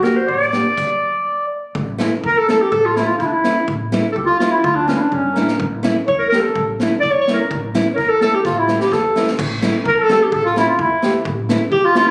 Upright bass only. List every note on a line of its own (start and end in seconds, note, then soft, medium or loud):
0.29 0.58 A1 medium
1.75 2.04 A1 loud
2.24 2.38 E2 medium
2.72 3.01 A1 loud
3.20 3.35 E2 loud
3.68 3.97 A1 loud
4.16 4.31 C#2 medium
4.64 4.93 D2 loud
5.13 5.34 G1 loud
5.38 5.59 A1 medium
5.60 5.88 A1 loud
6.08 6.22 E2 medium
6.56 6.84 A1 medium
7.03 7.18 E2 medium
7.51 7.79 A1 loud
7.98 8.12 E2 loud
8.45 8.73 A1 loud
8.92 9.06 E2 medium
9.39 9.67 A1 loud
9.85 9.99 E2 loud
10.32 10.60 A1 loud
10.79 10.93 E2 loud
11.26 11.53 A1 loud
11.72 11.86 E2 loud